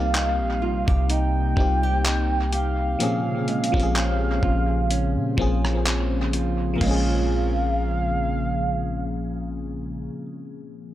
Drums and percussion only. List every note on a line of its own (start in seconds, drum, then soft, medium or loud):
0.14 clap loud
0.14 closed hi-hat medium
0.88 kick loud
1.10 closed hi-hat medium
1.57 kick loud
2.05 clap loud
2.05 closed hi-hat medium
2.53 closed hi-hat medium
3.00 closed hi-hat medium
3.48 closed hi-hat soft
3.64 closed hi-hat medium
3.74 kick medium
3.80 closed hi-hat medium
3.95 clap loud
3.95 closed hi-hat medium
4.43 kick medium
4.91 closed hi-hat medium
5.38 kick medium
5.65 cross-stick loud
5.86 clap loud
5.86 closed hi-hat medium
6.33 closed hi-hat medium
6.81 kick loud
6.81 crash medium